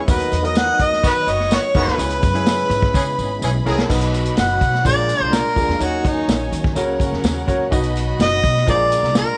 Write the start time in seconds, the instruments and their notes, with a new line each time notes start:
Already playing: tonewheel organ B3
0.07 upright bass D#2, upright piano D#3 B3 D#4 F#4 A#4, tonewheel organ F#3 D#4, harmonica B4, violin section D#5 D#6, kick, closed hi-hat, tambourine
0.20 closed hi-hat
0.32 upright bass E2, closed hi-hat, tambourine
0.42 upright piano B3 D#4 F#4 A#4, closed hi-hat
0.46 harmonica D#5
0.55 harmonica F#5, snare, closed hi-hat, tambourine
0.79 upright bass D#2, harmonica D#5, kick, closed hi-hat, tambourine
0.93 snare
1.03 upright bass D#3, horn section D#3 B3 F#4, kick, closed hi-hat, tambourine
1.08 harmonica B4
1.27 upright bass F#1, horn section D#3 B3 F#4, violin section C#5 C#6, harmonica D#5, closed hi-hat, tambourine
1.40 snare
1.51 horn section D#3 B3 F#4, harmonica C#5, snare, closed hi-hat, tambourine
1.75 upright bass F#1, horn section C#3 B3 F#4, upright piano B3 D#4 F#4 A#4, harmonica B4, kick, open hi-hat, tambourine
1.87 upright bass D2, snare
1.98 upright bass C#2, upright piano C#3 C#4 E4 G#4 B4, tonewheel organ G#3 C#4 E4, violin section B4 B5, closed hi-hat, tambourine
2.10 closed hi-hat
2.23 upright bass F#2, kick, closed hi-hat, tambourine
2.33 upright piano C#4 E4 G#4 B4, closed hi-hat
2.46 snare, closed hi-hat, tambourine
2.70 upright bass G#2, closed hi-hat, tambourine
2.82 kick, snare
2.94 upright bass C#3, horn section E3 C#4 G#4, kick, tambourine
3.18 upright bass G#1, horn section E3 C#4 G#4, tambourine
3.42 upright bass B1, horn section E3 C#4 G#4, tambourine
3.65 upright bass C2, horn section D#3 B3 G#4, upright piano C#4 E4 G#4 A#4, tambourine
3.79 snare
3.89 upright bass B1, upright piano B2 B3 D#4 F#4 B4, tonewheel organ F#3 B3 D#4 F#4, violin section F#4 D#5 B5, kick, crash, tambourine
4.01 closed hi-hat
4.14 closed hi-hat, tambourine
4.25 closed hi-hat
4.37 upright bass F#1, harmonica F#5, snare, closed hi-hat, tambourine
4.61 upright bass B2, kick, closed hi-hat, tambourine
4.74 snare
4.84 upright bass A#1, upright piano A#2 D4 F4 G#4 A#4, tonewheel organ G#3 A#3 D4 F4, violin section F4 D5 A#5, harmonica D5, kick, closed hi-hat, tambourine
5.09 closed hi-hat, tambourine
5.20 upright bass C2, harmonica C5
5.33 harmonica A#4, snare, closed hi-hat, tambourine
5.55 upright bass D2, upright piano D4 F4 G#4 A#4, kick, open hi-hat, tambourine
5.68 upright bass E2, snare
5.80 upright bass D#2, upright piano D#3 D#4 F#4 A#4 C#5, tonewheel organ F#3 C#4 D#4, violin section D#4 C#5 G#5, harmonica F#4, closed hi-hat, tambourine
6.05 harmonica D#4, kick, closed hi-hat, tambourine
6.28 upright bass A#1, snare, closed hi-hat, tambourine
6.52 upright bass D#3, closed hi-hat, tambourine
6.64 kick, snare
6.75 upright bass C#2, upright piano C#3 C#4 F#4 A#4 C#5, tonewheel organ F#3 F#4, violin section C#4 A#4 F#5, closed hi-hat, tambourine
7.00 kick, closed hi-hat, tambourine
7.12 upright bass E2, snare
7.23 upright bass D#2, snare, closed hi-hat, tambourine
7.47 upright bass C#2, upright piano C#4 F#4 A#4 C#5, kick, closed hi-hat, tambourine
7.71 upright bass B1, upright piano B2 D#4 F#4 B4 D#5, tonewheel organ B3 D#4, violin section F#4 D#5 B5, kick, closed hi-hat, tambourine
7.83 closed hi-hat
7.96 closed hi-hat, tambourine
8.19 upright bass F#1, harmonica D#5, snare, closed hi-hat, tambourine
8.44 upright bass B2, kick, closed hi-hat, tambourine
8.57 snare
8.66 upright bass A#1, upright piano A#2 F4 G#4 A#4 C5, tonewheel organ G#3 A#3 D4 F4, violin section F4 D5 A#5, harmonica D5, kick, closed hi-hat, tambourine
8.73 upright piano D5
8.92 closed hi-hat, tambourine
9.03 upright bass C2, snare
9.15 harmonica A#4, snare, closed hi-hat, tambourine